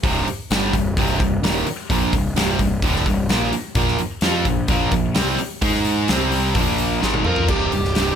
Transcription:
0.03 C1 C2 G2 C3, kick, open hi-hat
0.28 muted overdriven electric guitar stroke, muted distorted electric guitar stroke, muted picked electric bass stroke, open hi-hat
0.51 G1 G2 D3 G3, snare, open hi-hat
0.73 C1 C2 G2, kick, open hi-hat
0.97 C1 C2 G2 C3, kick, open hi-hat
1.20 C1 C2 G2, kick, open hi-hat
1.43 D#1 D#2 A#2 D#3, snare, open hi-hat
1.66 muted distorted electric guitar stroke, muted overdriven electric guitar stroke, muted picked electric bass stroke, open hi-hat
1.90 A#1 A#2 F3 A#3, kick, open hi-hat
2.13 C1 C2 G2, kick, open hi-hat
2.36 C1 C2 G2 C3, snare, open hi-hat
2.59 C1 C2 G2, kick, open hi-hat
2.82 D1 D2 A2 D3, kick, open hi-hat
2.96 snare
3.06 C1 C2 G2, kick, open hi-hat
3.29 A#1 A#2 F3 A#3, snare, open hi-hat
3.52 muted picked electric bass stroke, muted distorted electric guitar stroke, muted overdriven electric guitar stroke, open hi-hat
3.75 A#1 A#2 F3 A#3, kick, open hi-hat
3.88 snare
3.98 muted distorted electric guitar stroke, muted picked electric bass stroke, muted overdriven electric guitar stroke, open hi-hat
4.21 F2 F3 C4 F4, snare, open hi-hat
4.45 A#1 A#2 F3, kick, open hi-hat
4.68 A#1 A#2 F3 A#3, kick, open hi-hat
4.91 A#1 A#2 F3, kick, open hi-hat
5.15 C2 C3 G3 C4, snare, open hi-hat
5.38 muted overdriven electric guitar stroke, muted picked electric bass stroke, muted distorted electric guitar stroke, open hi-hat
5.62 G#2 G#3 D#4 G#4, kick, open hi-hat
5.75 snare
5.85 open hi-hat
6.08 C2 C3 G3 C4, snare, open hi-hat
6.32 open hi-hat
6.55 A#1 A#2 F3 A#3, kick, open hi-hat
6.78 open hi-hat
7.01 G#1 G#2 D#3 G#3, snare
7.14 high tom
7.25 F2 F3 C4 F4 A#4, mid tom
7.36 floor tom
7.48 C1 C2 G2 C3 G4, kick, crash
7.71 C1 C2 G2, open hi-hat
7.85 snare
7.95 C1 C2 G2 C3, snare, open hi-hat

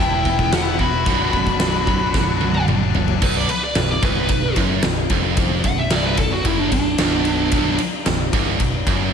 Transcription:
Already playing: E2
0.00 E1 B2 E4 G5
0.06 B3 E4
0.14 B3 E4
0.20 B3 E4
0.25 E1 E2 B2 B3 E4, kick
0.38 B3 E4, kick
0.44 B3 E4
0.52 E1 E2 B2 B3 E4 F#5, snare, china
0.60 B3 E4
0.68 B3 E4
0.75 B3 E4 F#4
0.79 E2 B2 E4 B5, kick
0.83 B3
0.90 B3 E4
0.98 B3 E4
1.06 B0 B1 F#2 B2 F#3 D4, kick, china
1.15 F#3 D4
1.22 F#3 D4
1.29 F#1 F#3 D4, kick
1.34 B1 F#2 F#3
1.38 D4
1.45 F#3 D4, kick
1.53 F#3 D4
1.60 B0 B1 F#2 F#3 D4, snare, china
1.68 F#3 D4
1.75 F#3 D4
1.83 F#3 D4, kick
1.88 B0 B1 F#2 F#3 D4
2.00 F#3 D4
2.07 F#3 D4
2.14 B0 B1 F#2 F#3 D4, kick, snare
2.22 F#3 D4
2.29 F#3 D4
2.37 F#3 D4
2.41 B0 B1 F#2, high tom
2.45 F#3 D4
2.53 F#3 D4, high tom
2.60 F#3 D4
2.68 F#1 B1 F#2 F#3 D4, mid tom
2.76 F#3 D4
2.84 F#3 D4
2.91 F#1 F#3 D4, floor tom
2.95 B1 F#2 F#3
2.99 D4
3.06 F#3 D4, floor tom
3.15 F#3 D4
3.22 B0 B1 B4, kick, crash
3.37 D5
3.49 B4, muted distorted electric guitar stroke, ride
3.64 D5
3.75 B0 B1 B4, snare, ride
3.91 D5
4.02 C1 C2 B4, kick, ride
4.29 B0 B1, kick, ride
4.56 F#1 F#2, kick, ride
4.83 B0 B1, snare, ride
5.10 F1 F2, kick, ride
5.37 kick, ride
5.64 B0 B1 F#5, kick, ride
5.79 E5
5.90 C1 C2 D5, snare, ride
6.06 B4
6.17 B0 B1 A4, kick, ride
6.32 F#4
6.45 F#1 F#2 E4, kick, ride
6.59 D4
6.71 B0 B1 D4, kick, ride
6.98 B0 B1, snare, ride
7.25 ride
7.52 B0 B1, kick, ride
7.79 muted distorted electric guitar stroke, muted picked electric bass stroke, ride
8.06 B0 B1, snare, ride
8.33 C1 C2, kick, ride
8.60 B0 B1, kick, ride
8.87 F#1 F#2, kick, ride

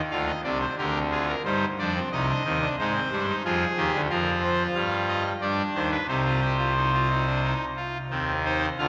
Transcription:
0.11 D2 D3 F4 F5
0.27 D#5
0.44 C2 C3 D4 D5
0.61 C5
0.77 D2 D3 G4 A#4
1.11 F4 G#4
1.28 A#4
1.44 G2 G3 D#4 C5
1.79 F2 F3 D4 D5
1.95 C4
2.12 C2 C3 D#4 D#5
2.29 D4
2.45 D#2 D#3 C4
2.61 D4
2.79 G#2 G#3 D#4 C5
2.95 C4
3.12 G2 G3 D4
3.28 D#4
3.45 F2 F3 F4 G#4
3.77 D#2 D#3 G4
3.93 D2 D3
4.09 F2 F3 F4 A#4
4.42 C5
4.75 G2 G3 F5
5.09 D#5
5.41 G2 G3 D4 D5
5.74 D#2 D#3 C5
5.92 B4
6.08 C2 C3 D#4 C5
6.25 F4
6.41 G4
6.58 F4
6.76 D#4
6.94 F4
7.09 D#4
7.26 D4
7.43 D#4
7.76 F4
8.10 D#2 D#3 C4
8.45 D#4 C5
8.78 D2 D3 F4 F5

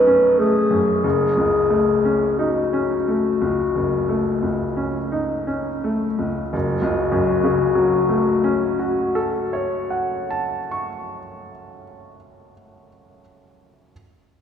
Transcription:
Already playing: B1 F#2 A3 C#4 D#4 B4
0.07 C#4
0.39 A3 G#4
0.70 F#2
1.03 F#1 G#4
1.37 C#2
1.70 A3
2.05 C#4
2.38 D#4 F#4
2.73 C#4
3.08 A3
3.42 C#2
3.75 F#1
4.09 A3
4.43 C#2
4.77 C#4
5.12 D#4
5.47 C#4
5.84 A3
6.19 C#2
6.51 F#1 F#4
6.82 C#2
7.12 F#2
7.43 C#3
7.75 F#3
8.09 A3
8.44 C#4
8.79 F#4
9.15 A4
9.53 C#5
9.90 F#5
10.30 A5
10.71 C#6

